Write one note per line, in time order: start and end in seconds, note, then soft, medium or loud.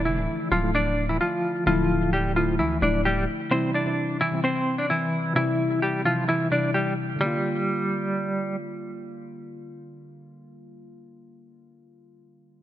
0.00 0.16 D3 medium
0.00 0.63 F3 loud
0.00 0.17 A3 medium
0.00 0.18 E4 loud
0.05 0.18 F1 loud
0.05 0.49 E3 medium
0.05 0.49 E4 medium
0.16 0.28 D1 loud
0.16 0.48 D3 medium
0.16 0.48 E3 medium
0.16 0.49 A3 medium
0.16 0.49 E4 medium
0.52 1.18 D1 loud
0.52 0.70 F3 medium
0.52 0.70 F4 medium
0.62 1.25 D3 medium
0.62 1.26 F3 medium
0.62 1.26 A3 medium
0.62 1.27 E4 medium
0.75 1.07 D4 medium
0.75 1.08 D5 medium
1.09 1.19 E3 medium
1.09 1.18 E4 medium
1.21 1.65 F3 medium
1.21 1.64 F4 medium
1.66 2.61 D1 loud
1.66 1.90 D3 loud
1.66 1.90 F3 medium
1.66 2.11 F3 medium
1.66 1.91 A3 loud
1.66 1.91 E4 loud
1.66 2.10 F4 loud
2.00 2.24 D3 medium
2.00 2.25 F3 medium
2.00 2.25 A3 medium
2.00 2.26 E4 medium
2.13 2.31 G3 medium
2.13 2.31 G4 medium
2.35 2.67 D3 medium
2.35 2.67 F3 medium
2.35 2.55 F3 medium
2.35 2.68 A3 medium
2.35 2.68 E4 medium
2.35 2.54 F4 medium
2.59 2.81 D2 loud
2.59 2.78 E3 medium
2.59 2.77 E4 medium
2.81 3.27 D1 loud
2.81 3.29 D3 medium
2.81 3.29 F3 medium
2.81 3.30 A3 medium
2.81 3.00 D4 medium
2.81 3.30 E4 medium
2.81 3.01 D5 medium
3.05 3.24 G3 medium
3.05 3.23 G4 medium
3.50 3.74 C3 loud
3.50 3.75 E3 medium
3.50 3.75 G3 medium
3.50 3.69 C4 medium
3.50 3.76 E4 loud
3.50 3.70 C5 medium
3.74 4.18 D4 medium
3.74 4.18 D5 medium
3.85 4.17 C3 medium
3.85 4.17 E3 medium
3.85 4.18 G3 medium
3.85 4.18 E4 medium
4.21 4.39 E3 medium
4.21 4.39 E4 medium
4.31 4.95 C3 medium
4.31 4.95 E3 medium
4.31 4.95 G3 medium
4.31 4.96 C4 medium
4.44 4.76 C4 medium
4.44 4.77 C5 medium
4.78 4.87 D4 medium
4.78 4.88 D5 medium
4.90 5.34 E3 medium
4.90 5.33 E4 medium
5.35 5.59 C3 loud
5.35 5.60 E3 loud
5.35 5.80 E3 medium
5.35 5.60 G3 loud
5.35 5.79 E4 loud
5.35 5.60 E4 loud
5.70 5.94 C3 medium
5.70 5.94 E3 medium
5.70 5.95 G3 medium
5.70 5.95 E4 medium
5.82 6.01 G3 medium
5.82 6.00 G4 loud
6.04 6.36 C3 medium
6.04 6.37 E3 medium
6.04 6.24 F3 medium
6.04 6.37 G3 medium
6.04 6.38 E4 medium
6.04 6.23 F4 medium
6.29 6.47 E3 medium
6.29 6.47 E4 medium
6.50 6.98 C3 medium
6.50 6.98 E3 medium
6.50 6.99 G3 medium
6.50 6.70 D4 medium
6.50 6.99 E4 medium
6.50 6.70 D5 medium
6.74 6.93 G3 medium
6.74 6.92 G4 medium
7.16 10.87 D3 medium
7.16 10.91 G3 medium
7.21 8.55 G3 medium
7.21 10.94 A#3 medium
7.26 10.97 F4 medium